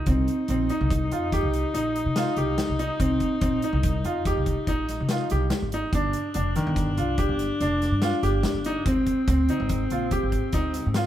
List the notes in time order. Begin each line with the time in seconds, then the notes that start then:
0.06 C2 C4 D#4, kick, closed hi-hat
0.28 closed hi-hat
0.48 A#1 C4, closed hi-hat
0.69 D#4, closed hi-hat
0.81 C2
0.90 kick, closed hi-hat
1.11 F2 F4, closed hi-hat
1.32 G4, kick, snare, closed hi-hat
1.43 C2
1.54 closed hi-hat
1.74 A#1 D#4, closed hi-hat
1.96 closed hi-hat
2.06 C3
2.16 F4, snare, closed hi-hat
2.36 C2 G4, closed hi-hat
2.58 snare, closed hi-hat
2.69 C2
2.79 D#4, closed hi-hat
3.00 C2 C4, kick, closed hi-hat
3.20 kick, closed hi-hat
3.41 A#1 C4, kick, closed hi-hat
3.62 D#4, closed hi-hat
3.73 C2
3.83 kick, closed hi-hat
4.04 F2 F4, closed hi-hat
4.25 G4, kick, snare, closed hi-hat
4.37 C2
4.46 kick, closed hi-hat
4.67 A#1 D#4, kick, closed hi-hat
4.89 snare, closed hi-hat
5.00 C3
5.09 F4, snare, closed hi-hat
5.30 C2 G4, snare, closed hi-hat
5.50 snare, closed hi-hat
5.62 G#1
5.72 D#4, closed hi-hat
5.93 G1 D4, kick, closed hi-hat
6.13 closed hi-hat
6.34 F1 D4, closed hi-hat
6.56 D#3, snare, closed hi-hat
6.67 G1
6.76 kick, snare, closed hi-hat
6.97 C2 F4, closed hi-hat
7.18 G4, kick, closed hi-hat
7.29 G1
7.39 snare, closed hi-hat
7.60 F1 D4, snare, closed hi-hat
7.82 snare, closed hi-hat
7.91 G2
8.02 F4, snare, closed hi-hat
8.23 G1 G4, snare, closed hi-hat
8.43 snare, closed hi-hat
8.54 G1
8.64 D#4, closed hi-hat
8.86 G#1 C4, kick, closed hi-hat
9.06 kick, closed hi-hat
9.28 D2 C4, kick, snare, closed hi-hat
9.49 D#4, closed hi-hat
9.60 G#1
9.69 kick, closed hi-hat
9.90 A#1 F4, closed hi-hat
10.11 G4, kick, closed hi-hat
10.23 G#1
10.32 kick, closed hi-hat
10.52 D2 D#4, kick, snare, closed hi-hat
10.74 snare, closed hi-hat
10.86 G#2
10.94 F4, snare, closed hi-hat